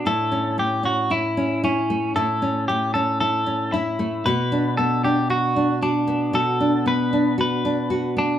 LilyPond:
<<
  \new Staff \with { instrumentName = "Clean electric guitar" } { \time 4/4 \key b \minor \tempo 4 = 115 a'4 g'8 fis'8 e'4 cis'4 | a'4 g'8 a'8 a'4 e'4 | b'4 a'8 g'8 fis'4 d'4 | a'4 b'4 b'4. d'8 | }
  \new Staff \with { instrumentName = "Nylon-string guitar" } { \time 4/4 \key b \minor <a, e'>8 cis'8 a8 cis'8 e'8 cis'8 e'8 a8 | <a, e'>8 cis'8 a8 cis'8 e'8 cis'8 e'8 a8 | <b, fis'>8 d'8 b8 d'8 fis'8 d'8 fis'8 b8 | <b, fis'>8 d'8 b8 d'8 fis'8 d'8 fis'8 b8 | }
>>